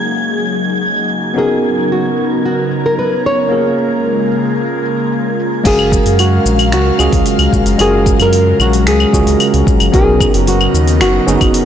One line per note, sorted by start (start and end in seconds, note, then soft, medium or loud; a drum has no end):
0.00 1.32 C#3 medium
0.00 3.47 F#3 medium
0.00 1.33 G#3 medium
0.00 1.32 A#3 medium
0.00 1.33 C#4 medium
0.00 3.47 D#4 medium
0.00 1.33 F4 medium
0.00 1.34 F#4 medium
0.00 0.79 G#4 medium
0.00 1.32 G#4 medium
0.00 1.34 A#4 medium
0.00 5.66 G#6 medium
0.00 shaker medium
0.17 shaker soft
0.30 shaker soft
0.57 shaker medium
0.70 shaker soft
0.83 shaker soft
1.10 shaker medium
1.24 shaker soft
1.34 5.61 C#3 medium
1.34 3.46 B3 medium
1.34 3.48 B3 medium
1.34 3.47 C#4 medium
1.34 3.47 D#4 medium
1.34 3.48 F#4 medium
1.34 5.61 A#4 medium
1.34 3.48 A#4 medium
1.38 1.92 G#4 medium
1.64 shaker medium
1.77 shaker soft
1.91 2.44 F#4 medium
1.91 shaker soft
2.17 shaker medium
2.31 shaker soft
2.44 2.86 F#4 medium
2.44 shaker soft
2.71 shaker medium
2.85 2.98 A#4 medium
2.85 shaker soft
2.99 3.25 B4 medium
3.24 5.09 C#5 medium
3.24 shaker medium
3.38 shaker soft
3.49 5.63 G#3 medium
3.49 5.61 A#3 medium
3.49 5.63 A#3 medium
3.49 5.61 C#4 medium
3.49 5.63 F4 medium
3.49 5.62 F4 medium
3.49 5.62 G#4 medium
3.49 5.63 A#4 medium
3.49 shaker soft
3.78 shaker medium
3.92 shaker soft
4.05 shaker soft
4.31 shaker medium
4.45 shaker soft
4.58 shaker soft
4.85 shaker medium
4.99 shaker soft
5.12 shaker soft
5.39 shaker medium
5.53 shaker soft
5.64 5.99 F#1 loud
5.64 11.65 C#3 medium
5.64 11.65 F#3 medium
5.64 6.95 G#3 medium
5.64 9.89 G#3 medium
5.64 6.95 C#4 medium
5.64 6.96 F#4 medium
5.64 6.19 G#4 loud
5.64 11.65 A#4 medium
5.64 6.97 A#4 medium
5.64 9.89 F5 medium
5.64 6.96 F5 medium
5.64 kick loud
5.64 open hi-hat medium
5.64 crash medium
5.64 shaker soft
5.79 claves medium
5.92 kick loud
5.92 shaker medium
6.06 6.40 F#2 medium
6.06 open hi-hat soft
6.06 shaker soft
6.19 6.69 F#4 medium
6.19 open hi-hat medium
6.19 claves medium
6.19 shaker soft
6.45 6.74 A#1 medium
6.45 shaker medium
6.59 open hi-hat soft
6.59 claves medium
6.59 shaker soft
6.72 6.92 C#2 medium
6.72 7.49 F#4 loud
6.72 finger snap medium
6.72 open hi-hat medium
6.72 shaker soft
6.99 7.09 C#2 loud
6.99 7.10 G#3 medium
6.99 7.10 C#4 medium
6.99 7.10 F4 medium
6.99 7.10 F#4 medium
6.99 7.11 G#4 loud
6.99 claves medium
6.99 shaker medium
7.12 7.22 C#2 loud
7.12 kick loud
7.12 open hi-hat soft
7.12 shaker soft
7.26 open hi-hat medium
7.26 shaker soft
7.39 7.49 C#2 loud
7.39 open hi-hat soft
7.39 claves medium
7.53 7.62 A#1 medium
7.53 kick medium
7.53 shaker medium
7.66 7.76 F#1 medium
7.66 open hi-hat soft
7.66 shaker soft
7.78 8.14 F#1 medium
7.78 9.09 G#3 medium
7.78 9.10 C#4 medium
7.78 9.10 F4 medium
7.78 9.10 F#4 medium
7.78 8.22 G#4 loud
7.78 9.11 A#4 medium
7.78 open hi-hat medium
7.78 claves medium
7.78 shaker soft
8.06 kick loud
8.06 shaker medium
8.20 8.54 F#2 medium
8.20 8.61 A#4 loud
8.20 open hi-hat soft
8.20 claves medium
8.20 shaker soft
8.33 open hi-hat medium
8.33 shaker soft
8.59 8.88 A#1 medium
8.59 8.88 F#4 medium
8.59 claves medium
8.59 shaker medium
8.73 open hi-hat soft
8.73 shaker soft
8.86 9.06 C#2 medium
8.86 9.37 G#4 medium
8.86 finger snap medium
8.86 open hi-hat medium
8.86 shaker soft
9.00 claves medium
9.13 9.23 C#2 medium
9.13 9.24 G#3 medium
9.13 9.24 C#4 medium
9.13 9.24 F4 medium
9.13 9.25 F#4 medium
9.13 9.25 G#4 medium
9.13 kick medium
9.13 shaker medium
9.27 9.36 C#2 medium
9.27 open hi-hat soft
9.27 shaker soft
9.40 open hi-hat medium
9.40 claves medium
9.40 shaker soft
9.54 9.63 C#2 loud
9.54 open hi-hat soft
9.67 9.76 A#1 medium
9.67 kick loud
9.67 shaker medium
9.80 9.90 F#1 medium
9.80 open hi-hat soft
9.80 claves medium
9.80 shaker soft
9.92 10.28 B1 medium
9.92 11.24 B3 medium
9.92 11.65 B3 medium
9.92 11.24 C#4 medium
9.92 11.24 D#4 medium
9.92 11.65 D#4 medium
9.92 11.25 F#4 medium
9.92 10.38 G#4 medium
9.92 11.25 A#4 medium
9.92 kick loud
9.92 open hi-hat soft
9.92 shaker soft
10.20 kick loud
10.20 claves medium
10.20 shaker medium
10.34 10.68 F#1 medium
10.34 10.48 F#4 medium
10.34 open hi-hat soft
10.34 shaker soft
10.47 10.98 F#4 medium
10.47 open hi-hat medium
10.47 shaker soft
10.61 claves medium
10.74 11.02 D#2 medium
10.74 shaker medium
10.87 open hi-hat soft
10.87 shaker soft
11.01 11.20 F#1 medium
11.01 11.65 F#4 medium
11.01 finger snap medium
11.01 open hi-hat soft
11.01 claves medium
11.01 shaker soft
11.27 11.37 F#1 loud
11.27 11.38 B3 medium
11.27 11.38 C#4 medium
11.27 11.38 D#4 medium
11.27 11.39 F#4 medium
11.27 11.39 G#4 loud
11.27 shaker medium
11.41 11.51 F#1 medium
11.41 kick loud
11.41 open hi-hat soft
11.41 claves medium
11.41 shaker soft
11.54 open hi-hat medium
11.54 shaker soft